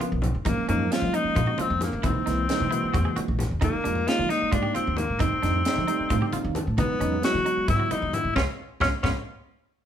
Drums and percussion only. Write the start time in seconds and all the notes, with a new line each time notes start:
0.00 closed hi-hat, muted conga
0.22 closed hi-hat, low conga
0.45 kick, closed hi-hat, muted conga, high conga
0.69 closed hi-hat
0.79 low conga
0.92 snare, closed hi-hat
1.02 muted conga, high conga, low conga
1.14 closed hi-hat
1.25 low conga
1.35 kick, closed hi-hat, low conga
1.46 high conga
1.58 closed hi-hat, muted conga
1.81 snare, closed hi-hat, low conga
2.03 kick, closed hi-hat, muted conga, high conga
2.27 snare, closed hi-hat
2.49 snare, closed hi-hat
2.60 muted conga, high conga
2.72 closed hi-hat
2.94 kick, closed hi-hat, low conga
3.05 high conga
3.17 closed hi-hat, muted conga
3.39 snare, closed hi-hat, low conga
3.62 kick, closed hi-hat, muted conga, high conga
3.85 closed hi-hat
3.95 low conga
4.08 snare, closed hi-hat
4.19 muted conga, high conga, low conga
4.30 snare, closed hi-hat
4.42 low conga
4.52 kick, closed hi-hat, low conga
4.63 high conga
4.75 closed hi-hat, muted conga
4.97 closed hi-hat, low conga
5.19 kick, closed hi-hat, muted conga, high conga
5.43 snare, closed hi-hat
5.53 low conga
5.65 snare, closed hi-hat
5.76 muted conga, high conga, low conga
5.88 closed hi-hat
5.99 low conga
6.10 kick, closed hi-hat, low conga
6.21 high conga
6.33 closed hi-hat, muted conga
6.55 closed hi-hat, low conga
6.78 kick, closed hi-hat, muted conga, high conga
7.01 closed hi-hat
7.12 low conga
7.23 snare, closed hi-hat
7.35 muted conga, high conga, low conga
7.46 closed hi-hat
7.58 low conga
7.68 kick, snare, closed hi-hat, low conga
7.79 high conga
7.91 closed hi-hat, muted conga
8.13 closed hi-hat, low conga
8.36 kick, snare, low conga
8.80 kick, snare, low conga
9.04 kick, snare, low conga